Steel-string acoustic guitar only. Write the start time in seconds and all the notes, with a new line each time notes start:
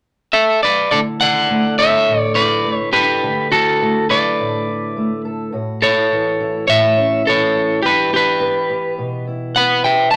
0.90 D3 A3 E4 A4
1.20 A4
1.49 A3 A4
1.79 A4
2.08 A2
2.37 E4
2.64 A3
2.93 A4
3.23 D3 A4
3.53 E4
3.82 A3 E4
4.11 A4
4.39 A2
4.69 E4
4.97 A3
5.25 A4
5.52 A2 F#4
5.84 E4
6.12 E3 F#4
6.40 E4
6.67 A2
6.97 C#4
7.25 E3
7.55 E4
7.82 E3 G4
8.12 G4
8.40 B3 G4
8.70 G4
8.98 B2
9.27 E4
9.56 B3
9.85 G4
10.13 D3